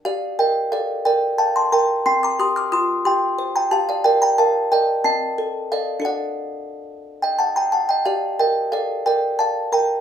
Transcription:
\new Staff \with { instrumentName = "Music box" } { \time 6/8 \key g \minor \tempo 4. = 60 << { <d'' f''>8 <ees'' g''>8 <d'' f''>8 <d'' g''>8 <f'' a''>16 <a'' c'''>16 <g'' bes''>8 | <g'' c'''>16 <bes'' d'''>16 <c''' ees'''>16 <d''' f'''>16 <c''' ees'''>8 <g'' c'''>8. <g'' bes''>16 <f'' a''>16 <d'' f''>16 | <d'' g''>16 <g'' bes''>16 <f'' a''>8 <ees'' g''>8 <ees'' a''>4 <d'' f''>8 | <d'' fis''>4. r16 <ees'' g''>16 <fis'' a''>16 <g'' bes''>16 <fis'' a''>16 <ees'' g''>16 |
<d'' f''>8 <ees'' g''>8 <d'' f''>8 <d'' g''>8 <f'' a''>8 <g'' bes''>8 | } \\ { g'8 bes'8 a'8 bes'8 g''8 bes'8 | c'8 g'8 f'8 g'8 c''8 g'8 | bes'8 bes'8 <bes' d''>8 c'8 a'8 <a' ees''>8 | <d' a'>2. |
g'8 bes'8 a'8 bes'8 d''8 bes'8 | } >> }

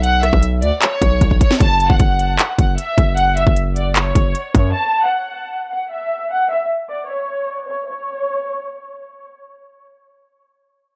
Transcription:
<<
  \new Staff \with { instrumentName = "Violin section" } { \time 4/4 \key fis \minor \tempo 4 = 153 fis''8 e''8 r8 d''8 cis''4. cis''8 | a''8. fis''4.~ fis''16 fis''8 e''4 | fis''8 e''8 r8 d''8 cis''4. cis''8 | a''8. fis''4.~ fis''16 fis''8 e''4 |
fis''8 e''8 r8 d''8 cis''4. cis''8 | cis''2. r4 | r1 | }
  \new Staff \with { instrumentName = "808-style bass" } { \clef bass \time 4/4 \key fis \minor b,,8. b,,8. d,16 r8. b,,8 b,,8 r8 | fis,,8. fis,,16 fis,,4 r8 fis,,8 r8 fis,,8~ | fis,,8. fis,,4.~ fis,,16 fis,,8 r8 fis,8 | r1 |
r1 | r1 | r1 | }
  \new DrumStaff \with { instrumentName = "Drums" } \drummode { \time 4/4 hh8 <hh ss>16 bd16 hh8 hh8 <hc hh>8 <hh bd>8 <hh bd>16 bd16 <hh bd>16 sn16 | <hh bd>8 hh16 bd16 <hh bd>8 hh8 <hc hh>8 <hh bd>8 hh8 <hh bd>8 | hh8 hh16 bd16 hh8 hh8 <hc hh>8 <hh bd>8 hh8 <hh bd>8 | r4 r4 r4 r4 |
r4 r4 r4 r4 | r4 r4 r4 r4 | r4 r4 r4 r4 | }
>>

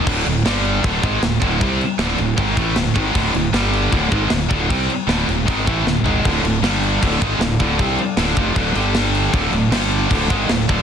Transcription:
<<
  \new Staff \with { instrumentName = "Pipe organ" } { \time 4/4 \key d \phrygian \tempo 4 = 155 << { r1 | r1 | r1 | r1 |
<d d' f'>4 <g a' g''>4 <d'' f''>2~ | <d'' f''>2~ <d'' f''>8 <g g''>4. | <d'' f''>4 <g g''>4 <d'' f''>2 | } \\ { r1 | r1 | r1 | r1 |
a4 r4 a'2~ | a'2~ a'8 d'4.~ | d'2 a'2 | } >> }
  \new Staff \with { instrumentName = "Distorted electric guitar" } { \clef bass \time 4/4 \key d \phrygian <d, a, d>8 <d, a,>8 <g, d g>4 <d, a, d>8 <gis, ees gis>8 <d, a,>8 <d, a, d>8 | <c g c'>8 r8 <d, a, d>8 <d, a,>8 <gis, ees gis>8 <a, e a>8 <d, a,>8 <gis, ees gis>8 | <d, a, d>8 <d, a,>8 <g, d g>4 <d, a, d>8 <gis, ees gis>8 <d, a,>8 <d, a, d>8 | <c g c'>8 r8 <d, a, d>8 <d, a,>8 <gis, ees gis>8 <a, e a>8 <d, a,>8 <gis, ees gis>8 |
<d, a, d>8 <d, a,>8 <g, d g>4 <d, a, d>8 <gis, ees gis>8 <d, a,>8 <d, a, d>8 | <c g c'>8 r8 <d, a, d>8 <f, c f>8 <d, a, d>8 <g, d g>4. | <d, a, d>8 <d, a,>8 <g, d g>4 <d, a, d>8 <gis, ees gis>8 <d, a,>8 <d, a, d>8 | }
  \new Staff \with { instrumentName = "Distorted electric guitar" } { \clef bass \time 4/4 \key d \phrygian <d, a, d>8 <d, a,>8 <g, d g>4 <d, a, d>8 <gis, ees gis>8 <d, a,>8 <d, a, d>8 | <c g c'>8 r8 <d, a, d>8 <d, a,>8 <gis, ees gis>8 <a, e a>8 <d, a,>8 <gis, ees gis>8 | <d, a, d>8 <d, a,>8 <g, d g>4 <d, a, d>8 <gis, ees gis>8 <d, a,>8 <d, a, d>8 | <c g c'>8 r8 <d, a, d>8 <d, a,>8 <gis, ees gis>8 <a, e a>8 <d, a,>8 <gis, ees gis>8 |
<d, a, d>8 <d, a,>8 <g, d g>4 <d, a, d>8 <gis, gis>8 <d, a,>8 <d, a, d>8 | <c g c'>8 r8 <d, a, d>8 <f, c f>8 <d, a, d>8 <g, d g>4. | <d, a, d>8 <d, a,>8 <g, d g>4 <d, a, d>8 <gis, ees gis>8 <d, a,>8 <d, a, d>8 | }
  \new Staff \with { instrumentName = "Distorted electric guitar" } { \clef bass \time 4/4 \key d \phrygian <d, a, d>8 <d, a,>8 <g, d g>4 <d, a, d>8 <gis, ees gis>8 <d, a,>8 <d, a, d>8 | <c g c'>8 r8 <d, a, d>8 <d, a,>8 <gis, ees gis>8 <a, e a>8 <d, a,>8 <gis, ees gis>8 | <d, a, d>8 <d, a,>8 <g, d g>4 <d, a, d>8 <gis, ees gis>8 <d, a,>8 <d, a, d>8 | <c g c'>8 r8 <d, a, d>8 <d, a,>8 <gis, ees gis>8 <a, e a>8 <d, a,>8 <gis, ees gis>8 |
<d, a, d>8 <d, a,>8 <g, d g>4 <d, a, d>8 <gis, ees gis>8 <d, a,>8 <d, a, d>8 | <c g c'>8 r8 <d, a, d>8 <f, c f>8 <d, a, d>8 <g, d g>4. | <d, a, d>8 <d, a,>8 <g, d g>4 <d, a, d>8 <gis, ees gis>8 <d, a,>8 <d, a, d>8 | }
  \new Staff \with { instrumentName = "Fingered electric bass" } { \clef bass \time 4/4 \key d \phrygian d,,8 d,,8 g,,4 d,,8 gis,,8 d,,8 d,,8 | c,8 r8 d,,8 d,,8 gis,,8 a,,8 d,,8 gis,,8 | d,,8 d,,8 g,,4 d,,8 gis,,8 d,,8 d,,8 | c,8 r8 d,,8 d,,8 gis,,8 a,,8 d,,8 gis,,8 |
d,,8 d,,8 g,,4 d,,8 gis,,8 d,,8 d,,8 | c,8 r8 d,,8 f,,8 d,,8 g,,4. | d,,8 d,,8 g,,4 d,,8 gis,,8 d,,8 d,,8 | }
  \new DrumStaff \with { instrumentName = "Drums" } \drummode { \time 4/4 <cymc bd>8 cymc8 <cymc sn>8 cymc8 <cymc bd>8 <cymc bd>8 <cymc sn>8 <cymc bd>8 | <cymc bd>8 cymc8 <cymc sn>8 cymc8 <cymc bd>8 <cymc bd>8 <cymc sn>8 <cymc bd>8 | <cymc bd>8 cymc8 <cymc sn>8 cymc8 <cymc bd>8 <cymc bd>8 <cymc sn>8 <cymc bd>8 | <cymc bd>8 cymc8 <cymc sn>8 cymc8 <cymc bd>8 <cymc bd>8 sn8 tomfh8 |
<cymc bd>8 cymc8 <cymc sn>8 cymc8 <cymc bd>8 <cymc bd>8 <cymc sn>8 <cymc bd>8 | <cymc bd>8 cymc8 <cymc sn>8 <cymc bd>8 <cymc bd>8 cymc8 <cymc sn>8 cymc8 | <cymc bd>8 cymc8 <cymc sn>8 cymc8 <cymc bd>8 <cymc bd>8 <cymc sn>8 <cymc bd>8 | }
>>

